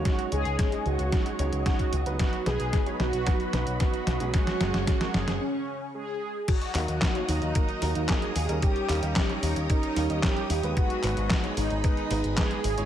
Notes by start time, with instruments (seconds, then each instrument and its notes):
Already playing: grand piano G#3 C#4 D#4 C#5, string machine D#5
0.05 analog polysynth F#4, string machine G#4 C#5 C#6, kick, snare, closed hi-hat
0.19 closed hi-hat
0.32 picked electric bass C#2, grand piano G#3 C#4 D#4 C#5, analog polysynth G#4, closed hi-hat
0.45 picked electric bass C#2, closed hi-hat
0.59 kick, snare, closed hi-hat
0.72 grand piano G#3 C#4 D#4 D#5, closed hi-hat
0.86 picked electric bass C#2, analog polysynth F#4, closed hi-hat
0.99 picked electric bass C#2, closed hi-hat
1.12 grand piano G#3 C#4 D#4 C#5, kick, snare, closed hi-hat
1.26 closed hi-hat
1.39 picked electric bass C#2, grand piano G#3 C#4 D#4 C#5, closed hi-hat
1.52 picked electric bass C#2, closed hi-hat
1.66 grand piano G#3 C#4 D#4 C#5, analog polysynth F#4, kick, snare, closed hi-hat
1.79 kick, closed hi-hat
1.93 picked electric bass C#2, closed hi-hat
2.06 picked electric bass C#2, grand piano F#3 B3 D#4 B4, closed hi-hat
2.19 string machine F#4 B4 B5, analog polysynth F#4, kick, snare, closed hi-hat
2.33 closed hi-hat
2.46 picked electric bass B1, grand piano F#3 B3 D#4 B4, analog polysynth G#4, snare, closed hi-hat
2.60 picked electric bass B1, closed hi-hat
2.73 kick, snare, closed hi-hat
2.86 grand piano F#3 B3 D#4 C#5, closed hi-hat
3.00 picked electric bass B1, analog polysynth F#4, snare, closed hi-hat
3.13 picked electric bass B1, closed hi-hat
3.27 grand piano F#3 B3 D#4 B4, kick, snare, closed hi-hat
3.40 closed hi-hat
3.53 picked electric bass B1, grand piano F#3 B3 D#4 B4, snare, closed hi-hat
3.67 picked electric bass B1, closed hi-hat
3.80 grand piano F#3 B3 D#4 B4, analog polysynth F#4, kick, snare, closed hi-hat
3.94 closed hi-hat
4.07 picked electric bass B1, snare, closed hi-hat
4.20 picked electric bass B1, grand piano F#3 G#3 C#4 G#4, closed hi-hat
4.34 analog polysynth F#4, string machine G#4 C#5 F#5 C#6, kick, snare, closed hi-hat
4.47 snare, closed hi-hat
4.61 picked electric bass F#1, grand piano F#3 G#3 C#4 G#4, snare, closed hi-hat
4.74 picked electric bass F#1, snare, closed hi-hat
4.87 analog polysynth F#4, kick, snare, closed hi-hat
5.01 grand piano F#3 G#3 C#4 A#4, snare, closed hi-hat
5.14 picked electric bass F#1, analog polysynth G#4, snare, closed hi-hat
5.28 picked electric bass F#1, snare, closed hi-hat
5.41 analog polysynth C#4
5.94 analog polysynth G#4
6.48 analog polysynth F#4, string machine F#4 D#5 A#5 D#6, kick, closed hi-hat, crash
6.62 closed hi-hat
6.75 picked electric bass D#2, grand piano F#3 A#3 D#4 A#4, clap, open hi-hat
6.88 picked electric bass D#2, closed hi-hat
7.02 kick, snare, clap, closed hi-hat
7.15 grand piano F#3 A#3 D#4 C#5, closed hi-hat
7.29 picked electric bass D#2, analog polysynth D#4, open hi-hat
7.42 picked electric bass D#2, closed hi-hat
7.55 grand piano F#3 A#3 D#4 A#4, analog polysynth D#4, kick, closed hi-hat
7.69 closed hi-hat
7.82 picked electric bass D#2, grand piano F#3 A#3 D#4 A#4, open hi-hat
7.95 picked electric bass D#2, closed hi-hat
8.09 grand piano F#3 A#3 D#4 A#4, analog polysynth G#4, kick, snare, clap, closed hi-hat
8.22 closed hi-hat
8.36 picked electric bass D#2, open hi-hat
8.49 picked electric bass D#2, grand piano G3 C#4 D#4 A#4, closed hi-hat
8.62 analog polysynth G4, string machine G4 C#5, kick, closed hi-hat
8.76 closed hi-hat
8.89 picked electric bass D#2, grand piano G3 C#4 D#4 A#4, clap, open hi-hat
9.02 picked electric bass D#2, closed hi-hat
9.16 kick, snare, clap, closed hi-hat
9.29 grand piano G3 C#4 D#4 C#5, closed hi-hat
9.43 picked electric bass D#2, analog polysynth D#4, open hi-hat
9.56 picked electric bass D#2, closed hi-hat
9.70 grand piano G3 C#4 D#4 A#4, analog polysynth D#4, kick, closed hi-hat
9.83 closed hi-hat
9.96 picked electric bass D#2, grand piano G3 C#4 D#4 A#4, open hi-hat
10.10 picked electric bass D#2, closed hi-hat
10.23 grand piano G3 C#4 D#4 A#4, analog polysynth G4, kick, snare, clap, closed hi-hat
10.37 closed hi-hat
10.50 picked electric bass D#2, open hi-hat
10.63 picked electric bass D#2, grand piano G#3 B3 D#4 B4, closed hi-hat
10.77 analog polysynth F#4, string machine G#4 D#5 B5, kick, closed hi-hat
10.90 closed hi-hat
11.03 picked electric bass G#1, grand piano G#3 B3 D#4 B4, clap, open hi-hat
11.17 picked electric bass G#1, closed hi-hat
11.30 kick, snare, clap, closed hi-hat
11.44 grand piano G#3 B3 D#4 C#5, closed hi-hat
11.57 picked electric bass G#1, analog polysynth D#4, open hi-hat
11.70 picked electric bass G#1, closed hi-hat
11.84 grand piano G#3 B3 D#4 B4, analog polysynth D#4, kick, closed hi-hat
11.97 closed hi-hat
12.11 picked electric bass G#1, grand piano G#3 B3 D#4 B4, open hi-hat
12.24 picked electric bass G#1, closed hi-hat
12.37 grand piano G#3 B3 D#4 B4, analog polysynth G#4, kick, snare, clap, closed hi-hat
12.51 closed hi-hat
12.64 picked electric bass G#1, open hi-hat
12.78 picked electric bass G#1, grand piano G#3 C#4 E4 C#5, closed hi-hat